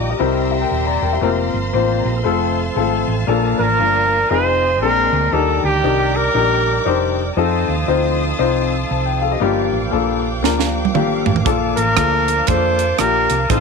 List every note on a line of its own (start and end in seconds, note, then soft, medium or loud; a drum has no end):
0.00 0.12 A#1 medium
0.00 0.18 G3 medium
0.00 0.10 G4 medium
0.00 0.19 D#5 medium
0.00 0.19 G5 medium
0.00 2.22 A#5 medium
0.00 0.18 D6 medium
0.10 0.34 D4 soft
0.10 0.18 G4 soft
0.10 0.18 A#4 medium
0.10 0.34 D#5 medium
0.19 0.64 C2 loud
0.19 0.98 C3 medium
0.19 1.20 G3 medium
0.19 0.53 C4 medium
0.19 1.20 C4 medium
0.19 0.53 E4 medium
0.19 0.50 E4 medium
0.19 0.50 G4 medium
0.19 0.50 A#4 medium
0.19 0.51 A#4 medium
0.19 1.21 E5 medium
0.19 1.22 G5 medium
0.19 3.25 C6 medium
0.51 0.61 G4 medium
0.51 0.61 E5 medium
0.61 0.71 A#4 medium
0.61 0.86 A#4 medium
0.61 0.71 G5 medium
0.61 0.86 G5 medium
0.70 0.98 D#1 medium
0.70 0.86 G4 medium
0.70 0.85 E5 medium
0.87 1.11 D5 medium
0.87 1.02 D5 medium
0.87 1.01 A#5 medium
1.02 1.19 E1 medium
1.02 1.12 A#4 medium
1.02 1.12 G5 medium
1.12 1.37 E4 soft
1.12 1.37 G4 soft
1.12 1.37 C5 medium
1.12 1.37 E5 medium
1.21 1.49 F1 loud
1.21 2.23 F3 medium
1.21 1.55 A#3 medium
1.21 2.23 A#3 medium
1.21 1.55 C4 medium
1.21 2.23 C4 medium
1.21 1.56 F4 medium
1.21 1.30 A4 medium
1.21 1.56 A#4 medium
1.21 3.25 C5 medium
1.21 4.78 F5 medium
1.28 1.75 A#4 medium
1.54 1.71 G1 medium
1.73 2.00 A1 medium
1.73 2.07 A#3 medium
1.73 2.07 C4 medium
1.73 1.89 D#4 soft
1.73 2.07 F4 medium
1.73 2.08 C5 medium
1.91 2.05 F4 medium
1.91 2.05 D5 medium
2.05 2.22 A#1 medium
2.05 2.15 G4 soft
2.05 2.15 D#5 medium
2.16 2.24 A4 soft
2.16 2.40 F5 medium
2.24 2.69 F1 medium
2.24 3.26 F3 medium
2.24 2.58 A3 medium
2.24 3.26 A3 medium
2.24 2.58 C4 medium
2.24 3.26 C4 medium
2.24 2.58 F4 medium
2.24 3.25 A4 medium
2.24 2.59 A4 medium
2.24 4.28 A5 medium
2.76 3.03 G#1 medium
2.76 3.09 A3 medium
2.76 3.09 C4 medium
2.76 3.10 F4 medium
2.76 3.10 A4 medium
3.08 3.25 A1 medium
3.27 3.54 A#1 loud
3.27 4.06 A#2 medium
3.27 4.28 F3 medium
3.27 3.61 A#3 medium
3.27 4.28 A#3 medium
3.27 3.61 D4 medium
3.27 4.28 D4 medium
3.27 3.61 F4 medium
3.27 3.61 A4 medium
3.27 4.28 A#4 medium
3.27 4.29 D5 medium
3.27 4.29 A#5 medium
3.59 3.76 A1 medium
3.59 4.31 A#4 loud
3.79 4.23 G1 medium
3.79 4.12 A#3 medium
3.79 4.12 D4 medium
3.79 4.13 F4 medium
3.79 4.13 A#4 medium
4.30 4.81 F1 loud
4.30 4.82 F3 medium
4.30 4.63 C4 medium
4.30 4.80 C4 medium
4.30 4.64 D#4 medium
4.30 4.82 D#4 medium
4.30 4.64 F4 medium
4.30 4.82 G#4 medium
4.30 4.64 G#4 medium
4.30 4.81 C5 medium
4.30 4.81 D#5 medium
4.30 5.32 G#5 medium
4.30 5.32 C6 medium
4.81 5.08 A#1 medium
4.81 5.30 A#2 medium
4.81 5.33 G#3 medium
4.81 5.15 C4 medium
4.81 5.33 C4 medium
4.81 5.32 D4 medium
4.81 5.15 D4 medium
4.81 5.15 G#4 medium
4.81 5.34 A#4 medium
4.81 5.32 A#4 medium
4.81 5.16 A#4 medium
4.81 5.33 D5 medium
4.81 7.36 A#5 medium
5.13 5.30 D2 medium
5.32 5.59 D#2 loud
5.32 6.11 D#3 medium
5.32 7.34 G3 medium
5.32 5.66 D4 medium
5.32 7.34 D4 medium
5.32 5.66 D#4 medium
5.32 7.34 D#4 medium
5.32 5.66 G4 medium
5.32 5.64 A4 medium
5.32 7.34 A#4 medium
5.32 5.67 A#4 medium
5.32 7.36 D5 medium
5.32 7.36 G5 medium
5.32 7.36 D6 medium
5.64 5.81 D2 medium
5.64 6.18 G4 medium
5.83 6.27 C2 medium
5.83 6.17 D4 medium
5.83 6.17 D#4 medium
5.83 6.17 G4 medium
5.83 6.18 A#4 medium
6.16 7.18 A#4 loud
6.34 6.78 A#1 medium
6.34 6.68 D4 medium
6.34 6.68 D#4 medium
6.34 6.68 G4 medium
6.34 6.69 A#4 medium
6.85 7.30 F1 medium
6.85 7.19 D4 medium
6.85 7.19 D#4 medium
6.85 7.20 G4 medium
6.85 7.20 C5 medium
7.36 7.64 F2 loud
7.36 9.38 F3 medium
7.36 7.70 C4 medium
7.36 9.38 C4 medium
7.36 7.70 D#4 medium
7.36 9.38 D#4 medium
7.36 7.71 F4 medium
7.36 9.38 A4 medium
7.36 7.71 A4 medium
7.36 13.60 F5 medium
7.36 9.40 A5 medium
7.36 9.40 C6 medium
7.36 9.40 D#6 medium
7.68 7.86 D#2 medium
7.87 8.32 D2 loud
7.87 8.21 C4 medium
7.87 8.22 D#4 medium
7.87 8.22 F4 medium
7.87 8.22 C5 medium
8.39 8.83 C2 medium
8.39 8.72 C4 medium
8.39 8.73 D#4 medium
8.39 8.73 F4 medium
8.39 8.73 C5 medium
8.91 9.34 C2 medium
8.91 9.06 C5 soft
8.91 9.06 A5 medium
9.06 9.21 G5 medium
9.22 9.32 A4 medium
9.22 9.31 F5 medium
9.32 9.40 G4 soft
9.32 9.56 D#5 medium
9.40 9.73 G1 medium
9.40 10.19 G2 medium
9.40 11.42 F3 medium
9.40 9.74 A#3 medium
9.40 11.42 A#3 medium
9.40 9.74 D4 medium
9.40 10.92 D4 medium
9.40 9.75 F4 medium
9.40 10.92 G4 medium
9.40 9.75 G4 medium
9.40 11.44 G5 medium
9.40 13.46 D6 medium
9.73 9.90 A1 medium
9.91 10.44 A#1 medium
9.91 10.25 A#3 medium
9.91 10.25 D4 medium
9.91 10.26 F4 medium
9.91 10.26 A4 medium
10.43 10.95 D2 medium
10.43 10.76 A#3 medium
10.43 10.77 D4 medium
10.43 10.77 F4 medium
10.43 10.77 A#4 medium
10.43 snare soft
10.60 snare soft
10.85 high tom medium
10.94 11.21 G#1 medium
10.94 11.28 A#3 medium
10.94 11.28 D4 medium
10.94 11.28 F4 medium
10.94 11.29 G4 medium
10.94 11.25 A4 medium
10.94 11.24 F5 medium
10.94 mid tom medium
11.25 11.43 A1 medium
11.25 11.35 F4 medium
11.25 11.35 D5 medium
11.25 floor tom medium
11.36 11.44 D4 soft
11.36 11.49 A#4 medium
11.36 floor tom medium
11.44 11.72 A#1 loud
11.44 12.24 A#2 medium
11.44 13.45 F3 medium
11.44 13.45 A#3 medium
11.44 11.79 A#3 medium
11.44 13.45 D4 medium
11.44 11.79 D4 medium
11.44 11.79 F4 medium
11.44 11.53 G#4 medium
11.44 11.79 A4 medium
11.44 13.60 A5 medium
11.44 kick loud
11.44 closed hi-hat medium
11.50 13.48 A#4 medium
11.76 11.94 A1 medium
11.76 12.49 A#4 loud
11.76 closed hi-hat medium
11.96 12.40 D2 medium
11.96 12.30 A#3 medium
11.96 12.30 D4 medium
11.96 12.30 F4 medium
11.96 12.30 A4 medium
11.96 kick medium
11.96 cross-stick loud
11.96 closed hi-hat medium
12.28 closed hi-hat medium
12.47 12.92 F2 medium
12.47 12.81 A#3 medium
12.47 12.81 D4 medium
12.47 12.81 F4 medium
12.47 12.82 A4 medium
12.47 12.98 C5 medium
12.47 kick loud
12.47 closed hi-hat medium
12.79 closed hi-hat medium
12.98 13.25 A#1 medium
12.98 13.32 A#3 medium
12.98 13.32 D4 medium
12.98 13.33 F4 medium
12.98 13.33 G4 medium
12.98 13.52 A#4 loud
12.98 cross-stick loud
12.98 closed hi-hat medium
13.30 13.47 C2 medium
13.30 closed hi-hat medium
13.49 13.60 A1 loud
13.49 13.60 A2 medium
13.49 13.60 F3 medium
13.49 13.60 C4 medium
13.49 13.60 C4 soft
13.49 13.60 D#4 medium
13.49 13.60 D#4 soft
13.49 13.60 F4 medium
13.49 13.60 A4 medium
13.49 13.60 C6 medium
13.49 13.60 D#6 medium
13.49 kick loud
13.49 closed hi-hat medium